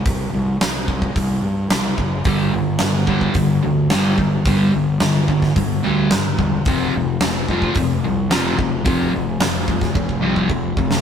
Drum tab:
HH |o---o---o---o---|o---o---o---o---|o---o---o---o---|o---o---o---o---|
SD |----o-------o---|----o-------o---|----o--o----o---|----o-------o---|
BD |o-----ooo-----o-|o-----ooo-----o-|o-----ooo-----o-|o-----ooo-----o-|

HH |o---o-----------|
SD |----o--o-------o|
BD |o-----oooo-oo-o-|